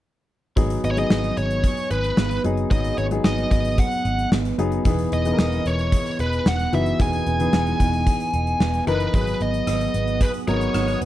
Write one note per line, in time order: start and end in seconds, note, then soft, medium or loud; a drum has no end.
0.56 0.76 G#1 medium
0.56 0.86 F#3 medium
0.56 2.70 F#3 medium
0.56 0.86 B3 medium
0.56 0.86 D#4 medium
0.56 0.86 G#4 medium
0.56 kick medium
0.56 closed hi-hat medium
0.70 closed hi-hat medium
0.84 1.03 G#1 medium
0.84 1.37 B3 medium
0.84 0.91 D#5 medium
0.84 closed hi-hat medium
0.91 0.98 C#5 medium
0.96 1.75 F#3 medium
0.96 1.75 B3 medium
0.96 1.75 D#4 medium
0.96 1.75 G#4 medium
0.96 1.37 D#5 loud
0.96 closed hi-hat medium
1.10 1.30 G#1 medium
1.10 1.90 D#4 medium
1.10 snare loud
1.24 closed hi-hat soft
1.37 1.66 G#1 medium
1.37 2.17 B3 medium
1.37 1.87 C#5 medium
1.37 closed hi-hat medium
1.51 closed hi-hat soft
1.64 3.78 G#4 medium
1.64 kick medium
1.64 closed hi-hat medium
1.77 closed hi-hat medium
1.91 2.10 G#1 medium
1.91 2.44 D#4 medium
1.91 2.41 B4 medium
1.91 closed hi-hat medium
2.04 closed hi-hat soft
2.17 2.37 G#1 medium
2.17 2.98 B3 medium
2.17 snare medium
2.31 closed hi-hat medium
2.44 2.64 F#1 medium
2.44 2.64 F#3 medium
2.44 2.64 B3 medium
2.44 2.64 D#4 medium
2.44 3.25 D#4 medium
2.44 2.64 G#4 medium
2.44 closed hi-hat medium
2.57 closed hi-hat soft
2.71 2.90 G#1 loud
2.71 3.00 F#3 medium
2.71 4.85 F#3 medium
2.71 3.00 B3 medium
2.71 3.01 D#4 medium
2.71 3.01 G#4 medium
2.71 2.96 D#5 medium
2.71 kick loud
2.71 closed hi-hat medium
2.84 closed hi-hat medium
2.98 3.17 G#1 loud
2.98 3.51 B3 medium
2.98 3.05 C#5 medium
2.98 closed hi-hat medium
3.11 3.89 F#3 medium
3.11 3.89 B3 medium
3.11 3.90 D#4 medium
3.11 3.90 G#4 medium
3.11 closed hi-hat medium
3.24 3.44 G#1 loud
3.24 4.04 D#4 medium
3.24 3.50 D#5 medium
3.24 snare loud
3.38 closed hi-hat soft
3.51 3.80 G#1 medium
3.51 4.31 B3 medium
3.51 3.79 D#5 medium
3.51 kick medium
3.51 closed hi-hat medium
3.65 closed hi-hat soft
3.78 5.92 G#4 medium
3.78 4.29 F#5 medium
3.78 kick medium
3.78 closed hi-hat medium
3.91 closed hi-hat soft
4.05 4.24 G#1 loud
4.05 4.58 D#4 medium
4.05 closed hi-hat medium
4.19 closed hi-hat soft
4.32 4.51 G#1 medium
4.32 4.85 B3 medium
4.32 snare medium
4.45 closed hi-hat medium
4.58 4.78 F#1 medium
4.58 4.78 F#3 medium
4.58 4.78 B3 medium
4.58 5.38 D#4 medium
4.58 4.78 D#4 medium
4.58 4.78 G#4 medium
4.58 closed hi-hat medium
4.72 closed hi-hat soft
4.85 5.05 E1 loud
4.85 5.15 E3 medium
4.85 5.11 B3 medium
4.85 5.15 B3 medium
4.85 5.15 D#4 medium
4.85 5.15 G#4 medium
4.85 kick loud
4.85 closed hi-hat medium
4.99 closed hi-hat medium
5.12 5.31 E1 loud
5.12 5.65 B3 medium
5.12 5.68 D#5 medium
5.12 closed hi-hat medium
5.25 6.04 E3 medium
5.25 6.04 B3 medium
5.25 6.04 D#4 medium
5.25 5.33 G#4 medium
5.25 closed hi-hat medium
5.33 6.08 A#4 medium
5.39 5.58 E1 medium
5.39 6.19 D#4 medium
5.39 snare loud
5.52 closed hi-hat soft
5.66 5.95 E1 medium
5.66 6.46 B3 medium
5.66 6.16 C#5 medium
5.66 closed hi-hat medium
5.79 closed hi-hat soft
5.92 8.07 G#4 medium
5.92 kick medium
5.92 closed hi-hat medium
6.06 closed hi-hat medium
6.19 6.39 E1 medium
6.19 6.73 D#4 medium
6.19 6.47 B4 medium
6.19 closed hi-hat medium
6.33 closed hi-hat soft
6.46 6.65 E1 loud
6.46 6.99 B3 medium
6.46 6.74 F#5 loud
6.46 snare medium
6.59 closed hi-hat medium
6.72 6.92 F#1 medium
6.72 6.92 E3 medium
6.72 6.92 B3 medium
6.72 7.53 D#4 medium
6.72 6.93 D#4 medium
6.72 6.93 F#4 medium
6.72 7.01 E5 medium
6.72 closed hi-hat medium
6.86 closed hi-hat soft
6.99 7.19 E1 medium
6.99 7.29 E3 medium
6.99 7.26 B3 medium
6.99 7.29 B3 medium
6.99 7.29 D#4 medium
6.99 7.29 G#4 medium
6.99 8.84 G#5 medium
6.99 kick loud
6.99 closed hi-hat medium
7.13 closed hi-hat medium
7.26 7.46 E1 loud
7.26 7.80 B3 medium
7.26 closed hi-hat medium
7.39 8.18 E3 medium
7.39 8.18 B3 medium
7.39 8.18 D#4 medium
7.39 8.18 G#4 medium
7.39 closed hi-hat medium
7.53 7.73 E1 medium
7.53 8.33 D#4 medium
7.53 snare loud
7.67 closed hi-hat soft
7.80 8.09 E1 medium
7.80 8.60 B3 medium
7.80 kick medium
7.80 closed hi-hat medium
7.93 closed hi-hat soft
8.07 9.14 G#4 medium
8.07 kick medium
8.07 closed hi-hat medium
8.20 closed hi-hat medium
8.33 8.53 E1 medium
8.33 8.87 D#4 medium
8.33 closed hi-hat medium
8.47 closed hi-hat soft
8.60 8.80 E1 medium
8.60 9.40 B3 medium
8.60 snare medium
8.74 closed hi-hat medium
8.87 9.06 F#1 medium
8.87 9.06 E3 medium
8.87 9.07 B3 medium
8.87 9.68 D#4 medium
8.87 9.07 D#4 medium
8.87 9.07 A#4 medium
8.87 9.13 B4 medium
8.87 closed hi-hat medium
9.00 closed hi-hat soft
9.14 9.33 G#1 medium
9.14 9.92 F#3 medium
9.14 11.05 F#3 medium
9.14 9.92 B3 medium
9.14 11.05 B3 medium
9.14 9.92 D#4 medium
9.14 11.05 G#4 medium
9.14 10.21 G#4 medium
9.14 9.93 G#4 medium
9.14 9.40 B4 medium
9.14 11.05 F#5 medium
9.14 11.05 D#6 medium
9.14 kick loud
9.14 closed hi-hat medium
9.27 closed hi-hat medium
9.40 9.60 G#1 medium
9.40 9.94 B3 medium
9.40 10.24 D#5 medium
9.40 closed hi-hat medium
9.54 closed hi-hat medium
9.67 9.87 G#1 medium
9.67 10.74 D#4 medium
9.67 cross-stick loud
9.67 closed hi-hat medium
9.81 closed hi-hat soft
9.94 10.23 G#1 medium
9.94 10.48 B3 medium
9.94 closed hi-hat medium
10.07 closed hi-hat soft
10.21 11.05 G#4 medium
10.21 10.29 B4 medium
10.21 kick medium
10.21 closed hi-hat medium
10.34 closed hi-hat medium
10.47 10.67 G#1 medium
10.47 11.05 F#3 medium
10.47 11.05 B3 medium
10.47 11.01 B3 medium
10.47 11.05 D#4 medium
10.47 11.05 A#4 medium
10.47 10.98 C#5 medium
10.47 closed hi-hat medium
10.61 closed hi-hat soft
10.74 10.94 G#1 medium
10.74 11.05 D#4 medium
10.74 cross-stick medium
10.74 closed hi-hat medium
10.88 closed hi-hat soft
11.01 11.05 F#1 medium
11.01 11.05 B3 medium
11.01 closed hi-hat medium